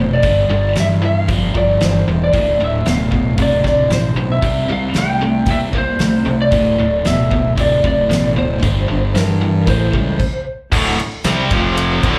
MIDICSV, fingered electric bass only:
0, 0, Header, 1, 3, 480
1, 0, Start_track
1, 0, Key_signature, -1, "minor"
1, 0, Tempo, 524934
1, 219, Time_signature, 4, 2, 24, 8
1, 11145, End_track
2, 0, Start_track
2, 0, Title_t, "Fingered electric bass"
2, 0, Program_c, 0, 33
2, 0, Note_on_c, 0, 29, 76
2, 213, Note_off_c, 0, 29, 0
2, 213, Note_on_c, 0, 31, 79
2, 442, Note_off_c, 0, 31, 0
2, 451, Note_on_c, 0, 31, 76
2, 681, Note_off_c, 0, 31, 0
2, 698, Note_on_c, 0, 43, 76
2, 1150, Note_off_c, 0, 43, 0
2, 1177, Note_on_c, 0, 31, 86
2, 1404, Note_off_c, 0, 31, 0
2, 1419, Note_on_c, 0, 31, 81
2, 1644, Note_off_c, 0, 31, 0
2, 1660, Note_on_c, 0, 31, 76
2, 1885, Note_off_c, 0, 31, 0
2, 1897, Note_on_c, 0, 28, 73
2, 2123, Note_off_c, 0, 28, 0
2, 2135, Note_on_c, 0, 26, 77
2, 2362, Note_off_c, 0, 26, 0
2, 2372, Note_on_c, 0, 26, 83
2, 2600, Note_off_c, 0, 26, 0
2, 2612, Note_on_c, 0, 26, 78
2, 2840, Note_off_c, 0, 26, 0
2, 2852, Note_on_c, 0, 26, 77
2, 3080, Note_off_c, 0, 26, 0
2, 3092, Note_on_c, 0, 26, 78
2, 3320, Note_off_c, 0, 26, 0
2, 3329, Note_on_c, 0, 26, 74
2, 3555, Note_off_c, 0, 26, 0
2, 3560, Note_on_c, 0, 33, 71
2, 3793, Note_off_c, 0, 33, 0
2, 3803, Note_on_c, 0, 35, 77
2, 4035, Note_off_c, 0, 35, 0
2, 4045, Note_on_c, 0, 36, 83
2, 4276, Note_off_c, 0, 36, 0
2, 4286, Note_on_c, 0, 36, 82
2, 4516, Note_off_c, 0, 36, 0
2, 4528, Note_on_c, 0, 36, 74
2, 4983, Note_off_c, 0, 36, 0
2, 4997, Note_on_c, 0, 36, 93
2, 5231, Note_off_c, 0, 36, 0
2, 5241, Note_on_c, 0, 36, 79
2, 5473, Note_off_c, 0, 36, 0
2, 5484, Note_on_c, 0, 36, 76
2, 5715, Note_off_c, 0, 36, 0
2, 5728, Note_on_c, 0, 36, 76
2, 5957, Note_off_c, 0, 36, 0
2, 5960, Note_on_c, 0, 26, 76
2, 6193, Note_off_c, 0, 26, 0
2, 6217, Note_on_c, 0, 26, 80
2, 6441, Note_off_c, 0, 26, 0
2, 6459, Note_on_c, 0, 26, 87
2, 6683, Note_off_c, 0, 26, 0
2, 6686, Note_on_c, 0, 26, 77
2, 6916, Note_off_c, 0, 26, 0
2, 6923, Note_on_c, 0, 26, 85
2, 7154, Note_off_c, 0, 26, 0
2, 7166, Note_on_c, 0, 26, 80
2, 7396, Note_off_c, 0, 26, 0
2, 7420, Note_on_c, 0, 33, 76
2, 7644, Note_off_c, 0, 33, 0
2, 7659, Note_on_c, 0, 26, 85
2, 7883, Note_off_c, 0, 26, 0
2, 7889, Note_on_c, 0, 31, 82
2, 8118, Note_off_c, 0, 31, 0
2, 8139, Note_on_c, 0, 31, 79
2, 8363, Note_off_c, 0, 31, 0
2, 8372, Note_on_c, 0, 43, 74
2, 8840, Note_on_c, 0, 33, 79
2, 8854, Note_off_c, 0, 43, 0
2, 9073, Note_off_c, 0, 33, 0
2, 9085, Note_on_c, 0, 37, 78
2, 9316, Note_off_c, 0, 37, 0
2, 9804, Note_on_c, 0, 26, 90
2, 10032, Note_off_c, 0, 26, 0
2, 10283, Note_on_c, 0, 36, 91
2, 10512, Note_off_c, 0, 36, 0
2, 10524, Note_on_c, 0, 29, 94
2, 10976, Note_off_c, 0, 29, 0
2, 11002, Note_on_c, 0, 26, 96
2, 11145, Note_off_c, 0, 26, 0
2, 11145, End_track
3, 0, Start_track
3, 0, Title_t, "Muted fingered electric bass strokes"
3, 10052, Note_on_c, 9, 29, 37
3, 10143, Note_off_c, 9, 29, 0
3, 11145, End_track
0, 0, End_of_file